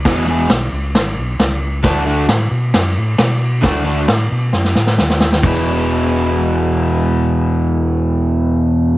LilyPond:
<<
  \new Staff \with { instrumentName = "Overdriven electric guitar" } { \time 4/4 \key e \mixolydian \tempo 4 = 134 <e, b, e gis b gis'>8 <e, b, e gis b gis'>8 r2. | <d a d' fis'>8 <d a d' fis'>8 r2. | <d a d' fis'>8 <d a d' fis'>8 r2. | <e, b, e gis b e'>1~ |
<e, b, e gis b e'>1 | }
  \new Staff \with { instrumentName = "Fingered electric bass" } { \clef bass \time 4/4 \key e \mixolydian e,,4 b,,8 cis,8 gis,,8 b,,8 cis,4 | d,4 a,8 b,8 fis,8 a,8 b,4 | d,4 a,8 b,8 fis,8 a,8 dis,4 | e,,1~ |
e,,1 | }
  \new DrumStaff \with { instrumentName = "Drums" } \drummode { \time 4/4 <cymc bd sn>4 <cymc sn>4 <cymc sn>4 <cymc sn>4 | <cymc bd sn>4 <cymc sn>4 <cymc sn>4 <cymc sn>4 | <cymc bd sn>4 <cymc sn>4 sn16 sn16 sn16 sn16 sn16 sn16 sn16 sn16 | <cymc bd>4 r4 r4 r4 |
r4 r4 r4 r4 | }
>>